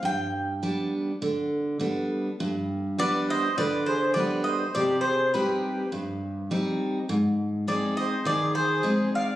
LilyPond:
<<
  \new Staff \with { instrumentName = "Bouzouki" } { \time 4/4 \tempo 4 = 102 g''2. r4 | r4 d''8 ees''8 d''8 c''8 d''8 ees''8 | d''8 c''8 b'4 r2 | r4 d''8 ees''8 d''8 c''4 f''8 | }
  \new Staff \with { instrumentName = "Accordion" } { \time 4/4 r1 | r4 b'8 c''8 b'8 aes'8 b'8 c''8 | g'8 aes'8 g'4 r2 | r4 aes'8 c''8 aes'8 aes'4 d''8 | }
  \new Staff \with { instrumentName = "Steel-string acoustic guitar" } { \time 4/4 g,4 <g b d'>4 d4 <g b d'>4 | g,4 <g b d'>4 d4 <g b d'>4 | c4 <g c' ees'>4 g,4 <g c' ees'>4 | aes,4 <aes c' ees'>4 ees4 <aes c' ees'>4 | }
>>